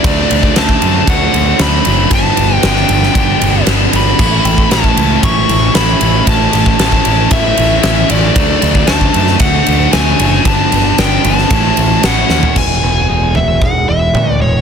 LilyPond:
<<
  \new Staff \with { instrumentName = "Lead electric guitar" } { \time 4/4 \key a \major \tempo 4 = 115 d''4 a''4 fis''4 b''4 | a''4 g''2 r8 b''8~ | b''4 a''4 cis'''4 b''4 | a''4 a''4 e''4. d''8~ |
d''4 a''4 fis''4 gis''4 | a''4 g''8 a''4. fis''4 | gis''4. e''8 fis''8 e''4 cis''8 | }
  \new Staff \with { instrumentName = "Distorted electric guitar" } { \time 4/4 \key a \major <d fis a d'>8 <fis a d'>8 <d fis a d'>8 <fis a d'>8 <d fis a d'>4 <d fis a d'>8 <fis a d'>8 | <g, d g b d'>8 <g b d'>8 <d g b d'>8 <g b d'>8 <g, d g b d'>4 <d g b d'>8 <g b d'>8 | <a, e a cis' e'>8 <a cis' e'>8 <e a cis' e'>8 <a cis' e'>8 <a, e a cis' e'>4 <e a cis' e'>8 <a cis' e'>8 | <a, e a cis' e'>8 <a cis' e'>8 <e a cis' e'>8 <a cis' e'>8 <a, e a cis' e'>4 <e a cis' e'>8 <a cis' e'>8 |
<d fis a d'>8 <fis a d'>8 <d fis a d'>8 <fis a d'>8 <d fis a d'>4 <d fis a d'>8 <fis a d'>8 | <g, d g b d'>8 <g b d'>8 <d g b d'>8 <g b d'>8 <a, e a cis' e'>4 <e a cis' e'>8 <a cis' e'>8 | r1 | }
  \new Staff \with { instrumentName = "Distorted electric guitar" } { \time 4/4 \key a \major <d fis a d'>4 <d fis a d'>4 <d fis a d'>8 <fis a d'>8 <d fis a d'>8 <fis a d'>8 | <g, d g b d'>4 <g, d g b d'>4 <d g b d'>8 <g b d'>8 <d g b d'>8 <g b d'>8 | <a, e a cis' e'>4 <a, e a cis' e'>4 <e a cis' e'>8 <a cis' e'>8 <e a cis' e'>8 <a cis' e'>8 | <a, e a cis' e'>4 <a, e a cis' e'>4 <e a cis' e'>8 <a cis' e'>8 <e a cis' e'>8 <a cis' e'>8 |
<d fis a d'>4 <d fis a d'>4 <d fis a d'>8 <fis a d'>8 <d fis a d'>8 <fis a d'>8 | <g, d g b d'>4 <g, d g b d'>4 <a, e a cis' e'>8 <a cis' e'>8 <e a cis' e'>8 <a cis' e'>8 | r1 | }
  \new Staff \with { instrumentName = "Clean electric guitar" } { \clef bass \time 4/4 \key a \major r1 | r1 | r1 | r1 |
r1 | r1 | e,8 b,8 gis8 e8 gis8 e8 b8 gis8 | }
  \new Staff \with { instrumentName = "Picked electric bass" } { \clef bass \time 4/4 \key a \major d,8 d,8 d,8 fis,8 d,8 d,8 d,8 fis,,8 | g,,8 g,,8 g,,8 g,,8 g,,8 g,,8 g,,8 g,,8 | a,,8 a,,8 a,,8 cis,8 a,,8 a,,8 a,,8 a,,8 | a,,8 a,,8 a,,8 a,,8 a,,8 a,,8 a,,8 a,,8 |
d,8 d,8 d,8 fis,8 d,8 d,8 d,8 fis,,8 | g,,8 g,,8 g,,8 g,,8 a,,8 a,,8 a,,8 dis,8 | e,,8 e,,8 e,,4 e,,8 e,,8 d,8 e,,8 | }
  \new DrumStaff \with { instrumentName = "Drums" } \drummode { \time 4/4 <bd cymr>8 cymr16 bd16 <cymr sn>16 bd16 cymr8 <bd cymr>8 cymr8 <cymr sn>8 cymr8 | <bd cymr>8 cymr8 <cymr sn>16 sn16 cymr16 sn16 <bd cymr>8 cymr8 <cymr sn>8 cymr8 | <cymc bd>8 cymr16 bd16 <cymr sn>16 bd16 cymr8 <bd cymr>8 cymr8 <cymr sn>8 cymr8 | <bd cymr>8 <cymr sn>16 bd16 <cymr sn>16 bd16 cymr8 <bd cymr>8 cymr8 <cymr sn>8 cymr8 |
<bd cymr>8 <cymr sn>16 bd16 <cymr sn>16 bd16 cymr16 sn16 <bd cymr>8 cymr8 <cymr sn>8 cymr8 | <bd cymr>8 cymr8 <cymr sn>8 cymr16 sn16 <bd cymr>8 cymr8 <cymr sn>8 sn16 tomfh16 | <cymc bd tomfh>4 r8 tomfh8 bd4 <tomfh toml>4 | }
>>